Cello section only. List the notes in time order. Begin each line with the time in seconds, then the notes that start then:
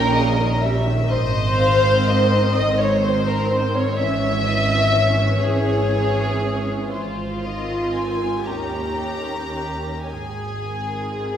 Already playing: A#2
1.12 G#2
2.55 G#2
3.99 G#2
5.43 G#2
6.92 G#2
8.45 D#2
10.07 G#2